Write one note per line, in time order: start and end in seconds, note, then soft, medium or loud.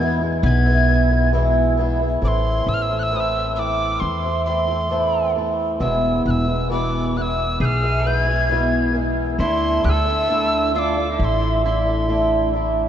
0.00 0.40 E2 loud
0.00 0.22 E3 medium
0.00 0.22 G#3 medium
0.00 0.13 B3 medium
0.00 0.21 B3 medium
0.00 0.20 E4 medium
0.00 0.14 G#6 loud
0.21 0.68 E3 soft
0.21 0.67 G#3 soft
0.21 0.66 B3 soft
0.21 0.64 E4 medium
0.43 2.18 B1 loud
0.43 1.29 B3 medium
0.43 1.30 G#6 loud
0.66 0.86 E3 soft
0.66 0.87 G#3 soft
0.66 0.89 B3 medium
0.66 0.88 E4 medium
0.88 1.10 E3 medium
0.88 1.11 G#3 medium
0.88 1.10 B3 medium
0.88 1.08 E4 medium
1.09 1.33 E3 soft
1.09 1.33 G#3 soft
1.09 1.33 B3 medium
1.09 1.33 E4 medium
1.33 1.78 E2 medium
1.33 1.78 B2 medium
1.33 1.76 E3 medium
1.33 1.77 G#3 medium
1.33 1.78 B3 medium
1.33 1.79 E4 medium
1.77 2.00 E3 medium
1.77 2.01 G#3 medium
1.77 2.00 B3 medium
1.77 1.98 E4 medium
2.00 2.21 E3 soft
2.00 2.22 G#3 soft
2.00 2.23 B3 medium
2.00 2.22 E4 medium
2.21 2.65 A1 medium
2.21 2.89 A2 medium
2.21 2.89 E3 medium
2.21 2.90 A3 medium
2.21 2.89 C4 medium
2.21 2.87 E4 medium
2.21 2.29 D6 medium
2.28 2.70 C6 medium
2.67 3.97 A1 medium
2.67 2.75 E6 loud
2.74 2.84 F6 medium
2.82 3.00 E6 loud
2.88 3.11 A3 soft
2.88 3.12 C4 soft
2.88 3.11 E4 soft
2.99 3.17 E6 loud
2.99 3.04 F#6 loud
3.11 3.56 A2 medium
3.11 3.55 E3 medium
3.11 3.56 A3 medium
3.11 3.57 C4 medium
3.11 3.58 E4 medium
3.16 3.21 D#6 loud
3.16 3.55 E6 loud
3.56 4.24 E3 soft
3.56 4.24 A3 soft
3.56 4.23 C4 medium
3.56 4.22 E4 medium
3.56 4.02 D6 medium
3.56 3.60 E6 medium
4.00 5.77 E2 medium
4.00 4.45 C6 medium
4.23 4.46 A3 soft
4.23 4.47 C4 soft
4.23 4.46 E4 soft
4.46 4.69 E3 soft
4.46 4.69 A3 medium
4.46 4.69 C4 medium
4.46 4.67 E4 medium
4.46 5.32 C6 medium
4.68 4.90 A3 soft
4.68 4.90 C4 soft
4.68 4.91 E4 soft
4.90 5.35 A2 medium
4.90 5.34 E3 medium
4.90 5.35 A3 medium
4.90 5.36 C4 medium
4.90 5.36 E4 medium
5.35 5.79 E3 medium
5.35 5.81 A3 medium
5.35 5.81 C4 soft
5.35 5.81 E4 medium
5.80 6.23 E1 medium
5.80 6.47 E2 medium
5.80 6.48 B2 medium
5.80 6.48 E3 medium
5.80 6.48 G#3 medium
5.80 6.47 B3 medium
5.80 6.46 E4 medium
5.80 6.23 E6 medium
6.26 7.56 E1 medium
6.26 6.32 F#6 medium
6.31 6.68 E6 medium
6.47 6.69 E3 soft
6.47 6.70 G#3 soft
6.47 6.70 B3 soft
6.47 6.70 E4 soft
6.70 7.15 E2 medium
6.70 7.15 B2 medium
6.70 7.14 E3 medium
6.70 7.16 G#3 medium
6.70 7.16 B3 medium
6.70 7.16 E4 medium
6.70 7.19 D6 medium
7.16 7.83 E3 medium
7.16 7.83 G#3 medium
7.16 7.81 B3 medium
7.16 7.81 E4 medium
7.16 7.23 F#6 medium
7.22 7.61 E6 medium
7.60 9.36 B1 medium
7.60 8.05 G#4 medium
7.60 7.66 G6 medium
7.65 8.09 F6 loud
7.82 8.02 E3 soft
7.82 8.04 G#3 soft
7.82 8.05 B3 soft
7.82 8.05 E4 soft
8.04 8.27 E3 soft
8.04 8.28 G#3 medium
8.04 8.27 B3 medium
8.04 8.26 E4 medium
8.04 8.95 B4 medium
8.04 8.19 G6 medium
8.19 8.96 G#6 medium
8.27 8.49 E3 soft
8.27 8.50 G#3 soft
8.27 8.50 B3 soft
8.27 8.50 E4 soft
8.49 8.95 E2 medium
8.49 8.95 B2 medium
8.49 8.92 E3 medium
8.49 8.93 G#3 medium
8.49 8.94 B3 medium
8.49 8.95 E4 medium
8.93 9.39 E3 soft
8.93 9.39 G#3 medium
8.93 9.40 B3 medium
8.93 9.40 E4 medium
9.39 9.82 D2 medium
9.39 10.07 D3 medium
9.39 10.07 A3 medium
9.39 10.06 D4 medium
9.39 9.81 E4 medium
9.39 10.04 E4 medium
9.39 9.86 C6 medium
9.84 11.15 D2 medium
9.84 10.75 A4 medium
9.84 9.90 F#6 loud
9.89 10.74 E6 loud
10.06 10.28 A3 soft
10.06 10.28 D4 soft
10.06 10.29 E4 soft
10.28 10.72 D3 medium
10.28 10.73 A3 medium
10.28 10.73 D4 medium
10.28 10.75 E4 medium
10.73 10.96 D3 medium
10.73 10.97 A3 medium
10.73 10.97 D4 medium
10.73 10.95 E4 medium
10.73 11.10 F4 medium
10.73 10.80 E6 medium
10.79 11.11 D6 medium
10.96 11.42 A3 soft
10.96 11.41 D4 soft
10.96 11.39 E4 soft
11.11 11.21 F4 soft
11.11 11.20 D6 medium
11.19 12.89 A1 medium
11.19 11.65 E4 medium
11.19 11.26 D6 medium
11.25 11.65 C6 medium
11.40 11.63 A3 soft
11.40 11.64 D4 soft
11.40 11.63 E4 medium
11.63 11.86 D3 soft
11.63 11.87 A3 medium
11.63 11.86 D4 medium
11.63 12.51 E4 medium
11.63 11.84 E4 medium
11.63 12.50 C6 medium
11.86 12.08 A3 soft
11.86 12.09 D4 soft
11.86 12.08 E4 medium
12.08 12.52 D3 medium
12.08 12.54 A3 medium
12.08 12.54 D4 medium
12.08 12.54 E4 medium
12.54 12.89 D3 medium
12.54 12.89 A3 medium
12.54 12.89 D4 medium
12.54 12.89 E4 medium